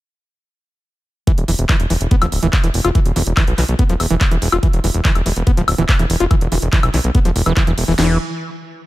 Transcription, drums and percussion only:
1.27 kick, closed hi-hat
1.38 closed hi-hat
1.48 open hi-hat
1.59 closed hi-hat
1.69 kick, clap, closed hi-hat, high woodblock
1.80 closed hi-hat
1.90 open hi-hat
2.01 closed hi-hat
2.11 kick, closed hi-hat
2.22 closed hi-hat, high woodblock
2.32 open hi-hat
2.43 closed hi-hat
2.53 kick, clap, closed hi-hat
2.64 closed hi-hat
2.74 open hi-hat
2.85 closed hi-hat, high woodblock
2.95 kick, closed hi-hat
3.06 closed hi-hat
3.16 open hi-hat
3.27 closed hi-hat
3.37 kick, clap, closed hi-hat, high woodblock
3.48 closed hi-hat
3.58 clap, open hi-hat
3.68 closed hi-hat
3.79 kick, closed hi-hat
3.89 closed hi-hat
4.00 open hi-hat, high woodblock
4.10 closed hi-hat
4.21 kick, clap, closed hi-hat
4.31 closed hi-hat
4.42 open hi-hat
4.52 closed hi-hat, high woodblock
4.63 kick, closed hi-hat
4.73 closed hi-hat
4.84 open hi-hat
4.94 closed hi-hat
5.05 kick, clap, closed hi-hat
5.15 closed hi-hat, high woodblock
5.26 open hi-hat
5.36 closed hi-hat
5.47 kick, closed hi-hat
5.57 closed hi-hat
5.68 open hi-hat, high woodblock
5.78 closed hi-hat
5.89 kick, clap, closed hi-hat
5.99 closed hi-hat
6.10 open hi-hat
6.20 closed hi-hat
6.31 kick, closed hi-hat, high woodblock
6.41 closed hi-hat
6.52 open hi-hat
6.62 closed hi-hat
6.73 kick, clap, closed hi-hat
6.83 closed hi-hat, high woodblock
6.94 clap, open hi-hat
7.04 closed hi-hat
7.15 kick, closed hi-hat
7.25 closed hi-hat
7.36 open hi-hat
7.46 closed hi-hat, high woodblock
7.57 kick, clap, closed hi-hat
7.67 closed hi-hat
7.78 open hi-hat
7.88 open hi-hat
7.99 snare, crash

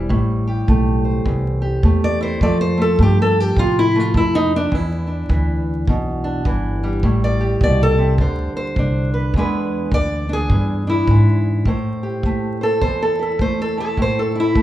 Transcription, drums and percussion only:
0.10 kick
0.68 kick
1.26 kick
1.83 kick
2.41 kick
2.99 kick
3.57 kick
4.14 kick
4.72 kick
5.30 kick
5.87 kick
6.45 kick
7.03 kick
7.61 kick
8.18 kick
8.76 kick
9.34 kick
9.92 kick
10.50 kick
11.07 kick
11.65 kick
12.23 kick
12.81 kick
13.39 kick
13.97 kick
14.55 kick

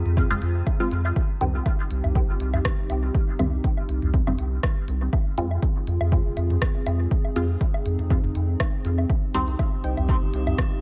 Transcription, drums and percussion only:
0.06 mid tom
0.17 kick, low woodblock
0.30 mid tom
0.42 closed hi-hat
0.67 kick, low woodblock
0.91 closed hi-hat
1.05 low woodblock
1.16 kick, low woodblock
1.41 closed hi-hat, mid tom
1.66 kick, low woodblock
1.91 closed hi-hat
2.04 mid tom, low woodblock
2.15 kick
2.40 closed hi-hat
2.54 mid tom, low woodblock
2.65 kick, cross-stick
2.90 closed hi-hat, low woodblock
3.15 kick
3.39 closed hi-hat, mid tom, low woodblock
3.64 kick
3.78 low woodblock
3.89 closed hi-hat
4.02 mid tom
4.14 kick
4.27 mid tom, low woodblock
4.39 closed hi-hat
4.63 kick, cross-stick, low woodblock
4.88 closed hi-hat
5.13 kick, low woodblock
5.38 closed hi-hat, mid tom
5.51 low woodblock
5.63 kick
5.87 closed hi-hat
6.01 mid tom, low woodblock
6.12 kick
6.37 closed hi-hat, low woodblock
6.50 mid tom
6.62 kick, cross-stick
6.86 closed hi-hat, low woodblock
7.11 kick
7.25 low woodblock
7.36 closed hi-hat, mid tom
7.61 kick
7.74 low woodblock
7.86 closed hi-hat
7.99 mid tom
8.10 kick, low woodblock
8.24 mid tom
8.35 closed hi-hat
8.60 kick, cross-stick, low woodblock
8.85 closed hi-hat
8.98 low woodblock
9.10 kick, closed hi-hat, low woodblock
9.34 closed hi-hat, mid tom
9.48 closed hi-hat
9.59 kick, closed hi-hat, low woodblock
9.84 closed hi-hat
9.97 closed hi-hat, mid tom, low woodblock
10.09 kick, closed hi-hat
10.34 closed hi-hat
10.47 closed hi-hat, mid tom, low woodblock
10.58 kick, cross-stick, closed hi-hat

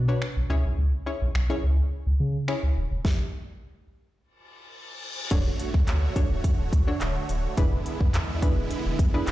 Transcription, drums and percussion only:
0.22 finger snap
1.35 finger snap
2.48 finger snap
3.05 kick, snare
5.31 kick, closed hi-hat, crash
5.60 closed hi-hat
5.74 kick
5.87 clap, closed hi-hat
6.16 kick, closed hi-hat
6.44 kick, closed hi-hat
6.73 kick, closed hi-hat
7.01 clap, closed hi-hat
7.29 closed hi-hat
7.57 kick, closed hi-hat
7.86 closed hi-hat
8.01 kick
8.14 clap, closed hi-hat
8.42 kick, closed hi-hat
8.71 closed hi-hat
8.99 kick, closed hi-hat
9.27 clap, closed hi-hat

